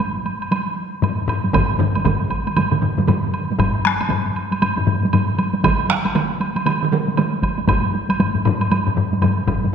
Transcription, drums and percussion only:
0.00 taiko high, high woodblock
0.26 taiko high, high woodblock
0.42 high woodblock
0.51 taiko high, high woodblock
1.02 taiko low-mid, taiko high, high woodblock
1.28 taiko low-mid, high woodblock
1.44 taiko high
1.53 taiko, taiko low-mid, taiko mid, taiko high, high woodblock
1.79 taiko low-mid, taiko mid
1.95 taiko high, high woodblock
2.05 taiko, taiko low-mid, taiko mid, taiko high, high woodblock
2.30 taiko, taiko high, high woodblock
2.47 taiko high, high woodblock
2.57 taiko low-mid, taiko mid, taiko high, high woodblock
2.71 taiko low-mid, taiko mid
2.82 taiko low-mid, taiko mid
2.98 taiko low-mid, taiko mid, taiko high
3.08 taiko low-mid, taiko mid, taiko high, high woodblock
3.34 high woodblock
3.51 taiko high
3.59 taiko, taiko low-mid, taiko high, high woodblock
3.85 taiko rim, taiko high
4.01 taiko high, high woodblock
4.10 taiko low-mid, taiko high, high woodblock
4.36 high woodblock
4.51 taiko high, high woodblock
4.62 taiko low-mid, taiko high, high woodblock
4.77 taiko low-mid
4.87 taiko low-mid, taiko high
5.03 taiko high
5.13 taiko low-mid, taiko high, high woodblock
5.38 taiko high, high woodblock
5.53 taiko high
5.64 taiko, taiko mid, taiko high, high woodblock
5.89 taiko rim, taiko high
6.05 taiko high, high woodblock
6.15 taiko mid, taiko high, high woodblock
6.41 taiko high, high woodblock
6.56 taiko high, high woodblock
6.66 taiko mid, taiko high, high woodblock
6.83 taiko mid
6.92 taiko mid, taiko high
7.07 taiko high
7.17 taiko mid, taiko high, high woodblock
7.42 taiko, taiko high, high woodblock
7.58 taiko high
7.68 taiko, taiko low-mid, taiko high, high woodblock
7.94 taiko high
8.09 taiko high, high woodblock
8.20 taiko low-mid, taiko high, high woodblock
8.35 taiko low-mid
8.45 taiko low-mid, taiko high, high woodblock
8.61 taiko high, high woodblock
8.71 taiko low-mid, taiko high, high woodblock
8.87 taiko low-mid
8.97 taiko low-mid, taiko high
9.13 taiko high
9.22 taiko low-mid, taiko high, high woodblock
9.48 taiko, taiko low-mid, taiko high, high woodblock
9.64 taiko high

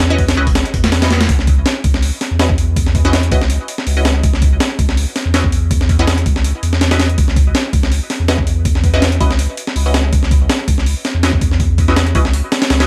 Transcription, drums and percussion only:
0.00 snare, open hi-hat
0.19 kick, open hi-hat
0.29 snare, open hi-hat
0.47 kick, open hi-hat
0.55 snare, open hi-hat
0.65 closed hi-hat
0.74 kick, open hi-hat
0.84 snare, open hi-hat
0.92 snare, open hi-hat
1.02 snare, open hi-hat
1.11 snare, open hi-hat
1.21 snare, open hi-hat
1.29 kick, open hi-hat
1.39 snare
1.47 kick, open hi-hat
1.66 snare, open hi-hat
1.84 kick, open hi-hat
1.94 snare
2.03 open hi-hat
2.21 snare, open hi-hat
2.39 snare, open hi-hat
2.50 kick
2.58 open hi-hat
2.76 kick, open hi-hat
2.86 snare
2.95 kick, open hi-hat
3.05 snare
3.13 snare, open hi-hat
3.23 closed hi-hat
3.32 kick, open hi-hat
3.41 snare
3.50 open hi-hat
3.68 open hi-hat
3.78 snare
3.87 open hi-hat
4.05 snare, open hi-hat
4.24 kick, open hi-hat
4.33 snare
4.42 kick, open hi-hat
4.60 snare, open hi-hat
4.79 kick, open hi-hat
4.89 snare
4.97 open hi-hat
5.16 snare, open hi-hat
5.34 snare, open hi-hat
5.44 kick
5.52 open hi-hat
5.71 kick, open hi-hat
5.81 snare
5.89 kick, open hi-hat
5.99 snare
6.07 snare, open hi-hat
6.18 closed hi-hat
6.26 kick, open hi-hat
6.36 snare
6.44 open hi-hat
6.63 open hi-hat
6.73 snare
6.81 snare, open hi-hat
6.91 snare, open hi-hat
7.00 snare, open hi-hat
7.10 closed hi-hat
7.18 kick, open hi-hat
7.28 snare
7.36 kick, open hi-hat
7.55 snare, open hi-hat
7.73 kick, open hi-hat
7.83 snare
7.92 open hi-hat
8.10 snare, open hi-hat
8.28 snare, open hi-hat
8.38 kick
8.47 open hi-hat
8.65 kick, open hi-hat
8.75 snare
8.84 kick, open hi-hat
8.94 snare
9.02 snare, open hi-hat
9.12 closed hi-hat
9.20 kick, open hi-hat
9.31 snare
9.39 open hi-hat
9.57 open hi-hat
9.67 snare
9.76 open hi-hat
9.94 snare, open hi-hat
10.13 kick, open hi-hat
10.23 snare
10.31 kick, open hi-hat
10.50 snare, open hi-hat
10.68 kick, open hi-hat
10.78 snare
10.86 open hi-hat
11.05 snare, open hi-hat
11.23 snare, open hi-hat
11.33 kick
11.41 kick, open hi-hat
11.52 snare
11.60 kick, open hi-hat
11.78 kick, open hi-hat
11.88 snare
11.96 snare, open hi-hat
12.07 closed hi-hat
12.15 kick, open hi-hat
12.25 snare
12.33 open hi-hat
12.52 snare, open hi-hat
12.62 snare, open hi-hat
12.70 snare, open hi-hat
12.80 snare, open hi-hat

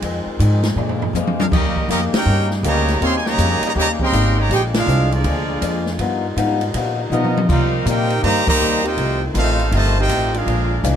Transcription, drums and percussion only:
0.02 kick, ride
0.39 kick, hi-hat pedal, ride
0.63 snare, ride
0.77 floor tom
0.89 floor tom
1.02 floor tom
1.15 hi-hat pedal, high tom
1.27 high tom
1.40 high tom
1.52 kick, crash
1.76 kick
1.89 kick, hi-hat pedal, ride
2.14 snare, ride
2.51 snare
2.64 kick, hi-hat pedal, ride
2.88 snare, ride
3.01 kick, ride
3.26 snare
3.38 kick, hi-hat pedal, ride
3.63 ride
3.75 kick
3.99 kick
4.13 kick, hi-hat pedal, ride
4.50 kick, ride
4.74 snare, ride
4.88 hi-hat pedal
5.12 ride
5.24 kick, ride
5.62 kick, hi-hat pedal, ride
5.86 snare
5.99 kick, ride
6.37 kick, hi-hat pedal, ride
6.61 ride
6.74 kick, ride
7.12 hi-hat pedal, high tom
7.24 high tom
7.37 high tom
7.49 kick, crash
7.86 kick, hi-hat pedal, ride
8.10 ride
8.23 kick, ride
8.47 kick, crash
8.61 hi-hat pedal
8.85 ride
8.97 kick, ride
9.35 kick, hi-hat pedal, ride
9.59 ride
9.72 kick, ride
10.09 kick, hi-hat pedal, ride
10.34 ride
10.47 kick, ride
10.84 kick, hi-hat pedal, ride

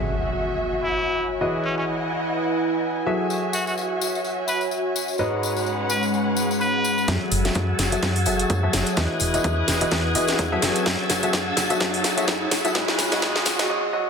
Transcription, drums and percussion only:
3.30 tambourine
3.53 tambourine
3.67 tambourine
3.78 tambourine
4.01 tambourine
4.15 tambourine
4.24 tambourine
4.48 tambourine
4.61 tambourine
4.71 tambourine
4.96 tambourine
5.08 tambourine
5.18 tambourine
5.43 tambourine
5.57 tambourine
5.66 tambourine
5.90 tambourine
6.03 tambourine
6.14 tambourine
6.37 tambourine
6.51 tambourine
6.61 tambourine
6.84 tambourine
6.98 tambourine
7.08 kick, snare, closed hi-hat, tambourine
7.31 open hi-hat, tambourine
7.45 snare, closed hi-hat, tambourine
7.54 kick, closed hi-hat, tambourine
7.79 snare, open hi-hat, tambourine
7.92 closed hi-hat, tambourine
8.02 kick, snare, closed hi-hat, tambourine
8.16 open hi-hat
8.26 open hi-hat, tambourine
8.39 closed hi-hat, tambourine
8.50 kick, closed hi-hat, tambourine
8.73 snare, open hi-hat, tambourine
8.86 closed hi-hat, tambourine
8.97 kick, snare, closed hi-hat, tambourine
9.20 open hi-hat, tambourine
9.34 closed hi-hat, tambourine
9.44 kick, closed hi-hat
9.68 snare, open hi-hat, tambourine
9.81 closed hi-hat, tambourine
9.91 kick, snare, closed hi-hat, tambourine
10.15 open hi-hat, tambourine
10.28 snare, closed hi-hat, tambourine
10.39 kick, closed hi-hat, tambourine
10.62 snare, open hi-hat, tambourine
10.75 closed hi-hat, tambourine
10.86 kick, snare, closed hi-hat, tambourine
11.10 snare, open hi-hat, tambourine
11.23 closed hi-hat, tambourine
11.33 kick, snare, closed hi-hat, tambourine
11.57 snare, open hi-hat, tambourine
11.70 closed hi-hat, tambourine
11.80 kick, snare, closed hi-hat, tambourine
11.94 open hi-hat
12.04 snare, open hi-hat, tambourine
12.18 closed hi-hat, tambourine
12.28 kick, snare, closed hi-hat, tambourine
12.51 snare, open hi-hat, tambourine
12.65 closed hi-hat, tambourine
12.75 kick, snare, closed hi-hat, tambourine
12.88 snare
12.99 snare, open hi-hat, tambourine
13.12 snare, closed hi-hat, tambourine
13.22 kick, snare, closed hi-hat, tambourine
13.36 snare
13.45 snare, open hi-hat, tambourine
13.59 snare, closed hi-hat, tambourine

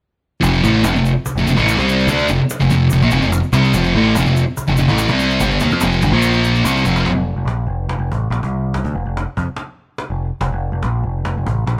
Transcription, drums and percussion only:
0.43 cajon bass, shaker
0.54 shaker
0.64 cajon bass, shaker
0.84 cajon slap, shaker
0.96 shaker
1.05 shaker
1.26 cajon bass, shaker
1.37 shaker
1.46 cajon slap, shaker
1.57 cajon bass, shaker
1.66 cajon slap, shaker
1.77 cajon bass, shaker
1.88 cajon slap, shaker
2.00 shaker
2.08 cajon bass, shaker
2.18 shaker
2.28 cajon slap, shaker
2.50 cajon slap, shaker
2.60 shaker
2.70 shaker
2.90 cajon bass, cajon slap, shaker
3.02 shaker
3.11 shaker
3.22 shaker
3.32 cajon slap, shaker
3.43 shaker
3.53 cajon bass, shaker
3.64 shaker
3.73 cajon bass, shaker
3.84 shaker
3.94 cajon slap
4.15 cajon slap, shaker
4.36 cajon slap, shaker
4.57 cajon bass, shaker
4.67 shaker
4.77 cajon slap, shaker
4.88 cajon bass, shaker
4.98 cajon slap, shaker
5.08 cajon bass, shaker
5.19 shaker
5.30 shaker
5.40 cajon bass, shaker
5.51 shaker
5.60 cajon bass, shaker
5.71 shaker
5.81 cajon slap, shaker
5.92 shaker
6.02 cajon bass, shaker
6.22 cajon slap, shaker
6.33 shaker
6.44 cajon slap, shaker
6.55 shaker
6.65 cajon slap, shaker
6.76 cajon slap, shaker
6.85 cajon slap, shaker
6.96 cajon slap, shaker
7.06 cajon bass, cajon slap
7.48 cajon slap
7.89 cajon slap
8.12 cajon bass
8.32 cajon slap
8.43 cajon bass
8.74 cajon bass, cajon slap
8.85 cajon bass
9.17 cajon slap
9.37 cajon bass
9.56 cajon slap
9.98 cajon slap
10.41 cajon bass, cajon slap
10.83 cajon slap
11.25 cajon slap
11.47 cajon bass
11.67 cajon slap

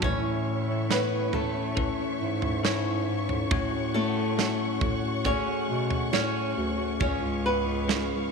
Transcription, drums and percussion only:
0.02 kick, floor tom
0.91 snare
1.33 floor tom
1.77 kick, floor tom
2.42 floor tom
2.65 snare
3.29 floor tom
3.51 kick, floor tom
4.39 snare
4.81 kick, floor tom
5.25 kick, floor tom
5.91 floor tom
6.13 snare
7.01 kick, floor tom
7.89 snare

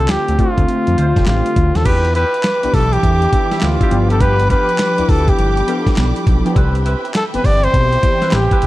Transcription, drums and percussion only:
0.08 snare, clap, closed hi-hat
0.28 closed hi-hat
0.39 kick, closed hi-hat
0.58 kick, closed hi-hat
0.69 closed hi-hat
0.87 closed hi-hat
0.98 closed hi-hat
1.16 kick, snare, closed hi-hat
1.26 snare, clap, closed hi-hat
1.46 closed hi-hat
1.56 kick, closed hi-hat
1.75 snare, closed hi-hat
1.85 kick, closed hi-hat, crash
2.05 closed hi-hat
2.15 closed hi-hat
2.34 closed hi-hat
2.43 snare, clap, closed hi-hat
2.63 closed hi-hat
2.74 kick, open hi-hat
2.93 closed hi-hat
3.03 kick, closed hi-hat
3.22 closed hi-hat
3.33 kick, closed hi-hat
3.51 snare, closed hi-hat
3.61 snare, clap, closed hi-hat
3.81 kick, closed hi-hat
3.91 closed hi-hat
4.10 closed hi-hat
4.20 kick, closed hi-hat
4.39 closed hi-hat
4.50 kick, closed hi-hat
4.69 closed hi-hat
4.78 snare, clap, closed hi-hat
4.98 closed hi-hat
5.09 kick, open hi-hat
5.28 kick, closed hi-hat
5.39 closed hi-hat
5.57 closed hi-hat
5.68 closed hi-hat
5.86 kick, snare, closed hi-hat
5.96 snare, clap, closed hi-hat
6.16 closed hi-hat
6.27 kick, closed hi-hat
6.46 closed hi-hat
6.56 kick, closed hi-hat
6.75 closed hi-hat
6.86 closed hi-hat
7.05 closed hi-hat
7.14 snare, clap, closed hi-hat
7.34 closed hi-hat
7.44 kick, open hi-hat
7.64 closed hi-hat
7.74 kick, closed hi-hat
7.93 closed hi-hat
8.03 kick, closed hi-hat
8.22 snare, closed hi-hat
8.31 snare, clap, closed hi-hat
8.51 kick, closed hi-hat
8.62 closed hi-hat

